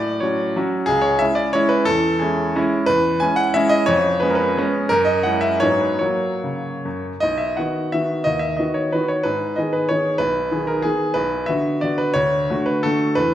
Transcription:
Already playing: A2 D5
0.20 F#3 C#4 F#4 C#5
0.56 F#3 C#4 F#4
0.86 C#2 G#4
1.01 C#5
1.19 G#3 C#4 E4 E5
1.35 D5
1.53 G#3 C#4 E4 C#5
1.69 B4
1.85 E2 A4
2.19 G#3 C#4 E4 G#4
2.56 G#3 C#4 E4
2.86 E2 B4
3.20 G#3 C#4 E4 G#5
3.36 F#5
3.54 G#3 C#4 E4 E5
3.69 D#5
3.86 F2 C#5
4.20 G#3 B3 C#4 B4
4.30 A#4
4.35 B4
4.57 G#3 B3 C#4
4.89 F#2 A#4
5.05 D#5
5.23 G#3 C#4 E4 F#5
5.41 E5
5.60 G#2 F#3 B3 D#4 C#5
5.80 B4
5.99 F#3 A#3 F#4 C#5
6.44 C#3
6.85 F#2
7.20 B1 D#5
7.38 E5
7.57 D#3 B3 F#4 F#5
7.92 D#3 B3 F#4 E5
8.24 D#2 D#5
8.39 E5
8.57 D#3 B3 F#4 D#5
8.74 C#5
8.92 D#3 B3 F#4 B4
9.08 C#5
9.23 G#2 B4
9.56 D#3 B3 G#4 D#5
9.73 B4
9.89 D#3 B3 G#4 C#5
10.18 B1 B4
10.52 D#3 B3 G#4
10.67 A#4
10.82 D#3 B3 G#4
11.14 B1 B4
11.46 D3 B3 F#4 E5
11.81 D3 B3 F#4 D5
11.98 B4
12.14 D2 C#5
12.50 D3 A3 F#4
12.66 B4
12.83 D3 A3 F#4 A4
13.15 E2 B4

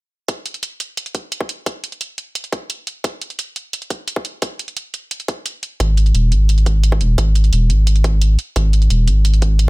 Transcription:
0.28 kick, closed hi-hat
0.46 closed hi-hat
0.54 closed hi-hat
0.63 closed hi-hat
0.80 closed hi-hat
0.97 closed hi-hat
1.06 closed hi-hat
1.15 kick, closed hi-hat
1.32 closed hi-hat
1.41 kick
1.49 closed hi-hat
1.66 kick, closed hi-hat
1.84 closed hi-hat
1.92 closed hi-hat
2.01 closed hi-hat
2.18 closed hi-hat
2.35 closed hi-hat
2.44 closed hi-hat
2.52 kick, closed hi-hat
2.70 closed hi-hat
2.87 closed hi-hat
3.04 kick, closed hi-hat
3.21 closed hi-hat
3.30 closed hi-hat
3.39 closed hi-hat
3.56 closed hi-hat
3.73 closed hi-hat
3.82 closed hi-hat
3.90 kick, closed hi-hat
4.08 closed hi-hat
4.16 kick
4.25 closed hi-hat
4.42 kick, closed hi-hat
4.59 closed hi-hat
4.68 closed hi-hat
4.77 closed hi-hat
4.94 closed hi-hat
5.11 closed hi-hat
5.20 closed hi-hat
5.28 kick, closed hi-hat
5.46 closed hi-hat
5.63 closed hi-hat
5.80 G#1, kick, closed hi-hat
5.97 closed hi-hat
6.06 closed hi-hat
6.14 D#1, closed hi-hat
6.32 G#1, closed hi-hat
6.49 closed hi-hat
6.58 closed hi-hat
6.66 kick, closed hi-hat
6.84 closed hi-hat
6.92 kick
7.01 D#1, closed hi-hat
7.18 G#1, kick, closed hi-hat
7.35 closed hi-hat
7.44 closed hi-hat
7.53 D#1, closed hi-hat
7.70 G#1, closed hi-hat
7.87 closed hi-hat
7.96 closed hi-hat
8.04 kick, closed hi-hat
8.21 closed hi-hat
8.39 closed hi-hat
8.56 G#1, kick, closed hi-hat
8.73 closed hi-hat
8.82 closed hi-hat
8.90 D#1, closed hi-hat
9.08 G#1, closed hi-hat
9.25 closed hi-hat
9.34 closed hi-hat
9.42 kick, closed hi-hat
9.59 closed hi-hat

